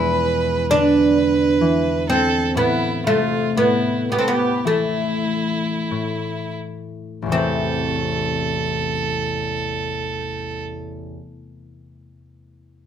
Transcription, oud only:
0, 0, Header, 1, 2, 480
1, 0, Start_track
1, 0, Key_signature, 0, "minor"
1, 0, Tempo, 924499
1, 1328, Time_signature, 4, 2, 24, 8
1, 1329, Tempo, 1011804
1, 1809, Tempo, 1102941
1, 2289, Tempo, 1239669
1, 2769, Tempo, 1411765
1, 3729, Tempo, 1321586
1, 4689, Tempo, 1379310
1, 5207, End_track
2, 0, Start_track
2, 0, Title_t, "Oud"
2, 0, Program_c, 0, 24
2, 0, Note_on_c, 0, 64, 65
2, 343, Note_off_c, 0, 64, 0
2, 367, Note_on_c, 0, 62, 68
2, 1088, Note_on_c, 0, 60, 59
2, 1103, Note_off_c, 0, 62, 0
2, 1332, Note_off_c, 0, 60, 0
2, 1334, Note_on_c, 0, 59, 51
2, 1551, Note_off_c, 0, 59, 0
2, 1571, Note_on_c, 0, 57, 61
2, 1809, Note_off_c, 0, 57, 0
2, 1810, Note_on_c, 0, 59, 53
2, 2041, Note_off_c, 0, 59, 0
2, 2047, Note_on_c, 0, 59, 45
2, 2076, Note_on_c, 0, 60, 40
2, 2082, Note_off_c, 0, 59, 0
2, 2115, Note_off_c, 0, 60, 0
2, 2116, Note_on_c, 0, 59, 47
2, 2285, Note_off_c, 0, 59, 0
2, 2287, Note_on_c, 0, 57, 49
2, 2987, Note_off_c, 0, 57, 0
2, 3247, Note_on_c, 0, 60, 47
2, 4415, Note_off_c, 0, 60, 0
2, 5207, End_track
0, 0, End_of_file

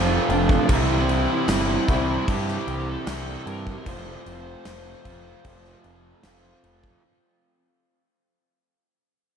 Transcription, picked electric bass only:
0, 0, Header, 1, 2, 480
1, 0, Start_track
1, 0, Tempo, 792602
1, 416, Time_signature, 4, 2, 24, 8
1, 5673, End_track
2, 0, Start_track
2, 0, Title_t, "Picked electric bass"
2, 0, Program_c, 0, 34
2, 0, Note_on_c, 0, 29, 101
2, 107, Note_off_c, 0, 29, 0
2, 175, Note_on_c, 0, 29, 93
2, 347, Note_off_c, 0, 29, 0
2, 419, Note_on_c, 0, 36, 78
2, 761, Note_off_c, 0, 36, 0
2, 896, Note_on_c, 0, 31, 91
2, 1068, Note_off_c, 0, 31, 0
2, 1141, Note_on_c, 0, 36, 108
2, 1312, Note_off_c, 0, 36, 0
2, 1381, Note_on_c, 0, 43, 104
2, 1551, Note_off_c, 0, 43, 0
2, 1618, Note_on_c, 0, 36, 80
2, 1790, Note_off_c, 0, 36, 0
2, 1858, Note_on_c, 0, 36, 91
2, 2030, Note_off_c, 0, 36, 0
2, 2097, Note_on_c, 0, 43, 92
2, 2269, Note_off_c, 0, 43, 0
2, 2340, Note_on_c, 0, 29, 92
2, 2511, Note_off_c, 0, 29, 0
2, 2580, Note_on_c, 0, 29, 92
2, 2751, Note_off_c, 0, 29, 0
2, 2818, Note_on_c, 0, 29, 99
2, 2990, Note_off_c, 0, 29, 0
2, 3059, Note_on_c, 0, 29, 106
2, 3230, Note_off_c, 0, 29, 0
2, 3299, Note_on_c, 0, 29, 99
2, 3470, Note_off_c, 0, 29, 0
2, 3538, Note_on_c, 0, 29, 83
2, 3709, Note_off_c, 0, 29, 0
2, 3781, Note_on_c, 0, 29, 95
2, 3951, Note_off_c, 0, 29, 0
2, 4018, Note_on_c, 0, 29, 79
2, 4189, Note_off_c, 0, 29, 0
2, 5673, End_track
0, 0, End_of_file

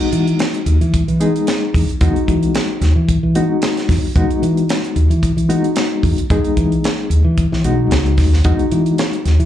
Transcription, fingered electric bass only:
0, 0, Header, 1, 3, 480
1, 0, Start_track
1, 0, Key_signature, 4, "major"
1, 0, Tempo, 536673
1, 1801, Time_signature, 4, 2, 24, 8
1, 8456, End_track
2, 0, Start_track
2, 0, Title_t, "Fingered electric bass"
2, 0, Program_c, 0, 33
2, 112, Note_on_c, 0, 52, 74
2, 295, Note_off_c, 0, 52, 0
2, 591, Note_on_c, 0, 39, 90
2, 692, Note_off_c, 0, 39, 0
2, 725, Note_on_c, 0, 52, 80
2, 908, Note_off_c, 0, 52, 0
2, 966, Note_on_c, 0, 52, 70
2, 1148, Note_off_c, 0, 52, 0
2, 1559, Note_on_c, 0, 40, 79
2, 1658, Note_off_c, 0, 40, 0
2, 1800, Note_on_c, 0, 40, 97
2, 1899, Note_off_c, 0, 40, 0
2, 2037, Note_on_c, 0, 52, 75
2, 2220, Note_off_c, 0, 52, 0
2, 2515, Note_on_c, 0, 39, 86
2, 2616, Note_off_c, 0, 39, 0
2, 2645, Note_on_c, 0, 52, 82
2, 2828, Note_off_c, 0, 52, 0
2, 2890, Note_on_c, 0, 52, 72
2, 3071, Note_off_c, 0, 52, 0
2, 3477, Note_on_c, 0, 40, 74
2, 3577, Note_off_c, 0, 40, 0
2, 3716, Note_on_c, 0, 40, 88
2, 3816, Note_off_c, 0, 40, 0
2, 3957, Note_on_c, 0, 52, 78
2, 4139, Note_off_c, 0, 52, 0
2, 4435, Note_on_c, 0, 39, 88
2, 4535, Note_off_c, 0, 39, 0
2, 4563, Note_on_c, 0, 52, 81
2, 4746, Note_off_c, 0, 52, 0
2, 4801, Note_on_c, 0, 52, 74
2, 4985, Note_off_c, 0, 52, 0
2, 5393, Note_on_c, 0, 40, 77
2, 5494, Note_off_c, 0, 40, 0
2, 5634, Note_on_c, 0, 40, 93
2, 5734, Note_off_c, 0, 40, 0
2, 5873, Note_on_c, 0, 52, 72
2, 6056, Note_off_c, 0, 52, 0
2, 6350, Note_on_c, 0, 39, 81
2, 6451, Note_off_c, 0, 39, 0
2, 6480, Note_on_c, 0, 52, 76
2, 6663, Note_off_c, 0, 52, 0
2, 6729, Note_on_c, 0, 52, 75
2, 6811, Note_off_c, 0, 52, 0
2, 6836, Note_on_c, 0, 35, 75
2, 7053, Note_off_c, 0, 35, 0
2, 7069, Note_on_c, 0, 37, 72
2, 7288, Note_off_c, 0, 37, 0
2, 7314, Note_on_c, 0, 39, 71
2, 7531, Note_off_c, 0, 39, 0
2, 7557, Note_on_c, 0, 40, 89
2, 7655, Note_off_c, 0, 40, 0
2, 7797, Note_on_c, 0, 52, 82
2, 7977, Note_off_c, 0, 52, 0
2, 8276, Note_on_c, 0, 39, 81
2, 8374, Note_off_c, 0, 39, 0
2, 8404, Note_on_c, 0, 52, 85
2, 8456, Note_off_c, 0, 52, 0
2, 8456, End_track
3, 0, Start_track
3, 0, Title_t, "Muted fingered electric bass strokes"
3, 1692, Note_on_c, 9, 29, 34
3, 1782, Note_off_c, 9, 29, 0
3, 1934, Note_on_c, 9, 29, 35
3, 2023, Note_off_c, 9, 29, 0
3, 3602, Note_on_c, 9, 29, 34
3, 3692, Note_off_c, 9, 29, 0
3, 3843, Note_on_c, 9, 29, 34
3, 3932, Note_off_c, 9, 29, 0
3, 5530, Note_on_c, 9, 29, 33
3, 5620, Note_off_c, 9, 29, 0
3, 5766, Note_on_c, 9, 29, 32
3, 5855, Note_off_c, 9, 29, 0
3, 7683, Note_on_c, 9, 29, 31
3, 7773, Note_off_c, 9, 29, 0
3, 8456, End_track
0, 0, End_of_file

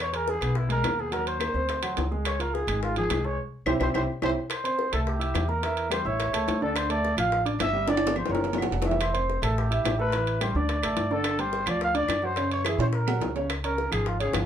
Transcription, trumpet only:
0, 0, Header, 1, 2, 480
1, 0, Start_track
1, 0, Tempo, 281294
1, 1915, Time_signature, 4, 2, 24, 8
1, 24671, End_track
2, 0, Start_track
2, 0, Title_t, "Trumpet"
2, 0, Program_c, 0, 56
2, 30, Note_on_c, 0, 73, 102
2, 252, Note_on_c, 0, 70, 97
2, 277, Note_off_c, 0, 73, 0
2, 498, Note_on_c, 0, 68, 94
2, 524, Note_off_c, 0, 70, 0
2, 965, Note_on_c, 0, 64, 82
2, 990, Note_off_c, 0, 68, 0
2, 1199, Note_off_c, 0, 64, 0
2, 1217, Note_on_c, 0, 70, 94
2, 1706, Note_on_c, 0, 68, 85
2, 1732, Note_off_c, 0, 70, 0
2, 1925, Note_on_c, 0, 70, 98
2, 1951, Note_off_c, 0, 68, 0
2, 2166, Note_on_c, 0, 72, 101
2, 2191, Note_off_c, 0, 70, 0
2, 3607, Note_off_c, 0, 72, 0
2, 3853, Note_on_c, 0, 73, 96
2, 4100, Note_on_c, 0, 70, 84
2, 4126, Note_off_c, 0, 73, 0
2, 4328, Note_on_c, 0, 68, 88
2, 4354, Note_off_c, 0, 70, 0
2, 4808, Note_off_c, 0, 68, 0
2, 4821, Note_on_c, 0, 65, 80
2, 5038, Note_off_c, 0, 65, 0
2, 5064, Note_on_c, 0, 68, 90
2, 5551, Note_on_c, 0, 73, 90
2, 5576, Note_off_c, 0, 68, 0
2, 5780, Note_off_c, 0, 73, 0
2, 6260, Note_on_c, 0, 72, 82
2, 6372, Note_off_c, 0, 72, 0
2, 6518, Note_on_c, 0, 72, 93
2, 6625, Note_off_c, 0, 72, 0
2, 6746, Note_on_c, 0, 72, 94
2, 6856, Note_off_c, 0, 72, 0
2, 7223, Note_on_c, 0, 72, 97
2, 7334, Note_off_c, 0, 72, 0
2, 7713, Note_on_c, 0, 72, 88
2, 8372, Note_off_c, 0, 72, 0
2, 8425, Note_on_c, 0, 69, 78
2, 8530, Note_off_c, 0, 69, 0
2, 8661, Note_on_c, 0, 67, 79
2, 9364, Note_on_c, 0, 70, 96
2, 9389, Note_off_c, 0, 67, 0
2, 10085, Note_off_c, 0, 70, 0
2, 10098, Note_on_c, 0, 72, 94
2, 10356, Note_on_c, 0, 73, 98
2, 10382, Note_off_c, 0, 72, 0
2, 11299, Note_off_c, 0, 73, 0
2, 11313, Note_on_c, 0, 69, 93
2, 11538, Note_on_c, 0, 72, 96
2, 11564, Note_off_c, 0, 69, 0
2, 11780, Note_on_c, 0, 74, 102
2, 11806, Note_off_c, 0, 72, 0
2, 12237, Note_off_c, 0, 74, 0
2, 12247, Note_on_c, 0, 77, 101
2, 12690, Note_off_c, 0, 77, 0
2, 12992, Note_on_c, 0, 76, 109
2, 13467, Note_on_c, 0, 74, 104
2, 13493, Note_off_c, 0, 76, 0
2, 13932, Note_off_c, 0, 74, 0
2, 13950, Note_on_c, 0, 72, 91
2, 14193, Note_on_c, 0, 70, 82
2, 14219, Note_off_c, 0, 72, 0
2, 14655, Note_off_c, 0, 70, 0
2, 15374, Note_on_c, 0, 72, 88
2, 16097, Note_on_c, 0, 69, 83
2, 16123, Note_off_c, 0, 72, 0
2, 16346, Note_on_c, 0, 67, 80
2, 16372, Note_off_c, 0, 69, 0
2, 17049, Note_off_c, 0, 67, 0
2, 17065, Note_on_c, 0, 71, 101
2, 17719, Note_off_c, 0, 71, 0
2, 17783, Note_on_c, 0, 72, 84
2, 18029, Note_on_c, 0, 74, 95
2, 18054, Note_off_c, 0, 72, 0
2, 18986, Note_on_c, 0, 69, 93
2, 19011, Note_off_c, 0, 74, 0
2, 19446, Note_on_c, 0, 72, 102
2, 19471, Note_off_c, 0, 69, 0
2, 19956, Note_on_c, 0, 74, 96
2, 19982, Note_off_c, 0, 72, 0
2, 20172, Note_off_c, 0, 74, 0
2, 20192, Note_on_c, 0, 77, 98
2, 20395, Note_off_c, 0, 77, 0
2, 20420, Note_on_c, 0, 74, 100
2, 20905, Note_on_c, 0, 72, 106
2, 20931, Note_off_c, 0, 74, 0
2, 21357, Note_off_c, 0, 72, 0
2, 21367, Note_on_c, 0, 73, 98
2, 21611, Note_on_c, 0, 68, 88
2, 21636, Note_off_c, 0, 73, 0
2, 21839, Note_off_c, 0, 68, 0
2, 21850, Note_on_c, 0, 72, 90
2, 21953, Note_off_c, 0, 72, 0
2, 22077, Note_on_c, 0, 70, 83
2, 22741, Note_off_c, 0, 70, 0
2, 23280, Note_on_c, 0, 70, 90
2, 23720, Note_off_c, 0, 70, 0
2, 23763, Note_on_c, 0, 68, 92
2, 24014, Note_on_c, 0, 65, 72
2, 24039, Note_off_c, 0, 68, 0
2, 24224, Note_off_c, 0, 65, 0
2, 24234, Note_on_c, 0, 68, 96
2, 24453, Note_off_c, 0, 68, 0
2, 24671, End_track
0, 0, End_of_file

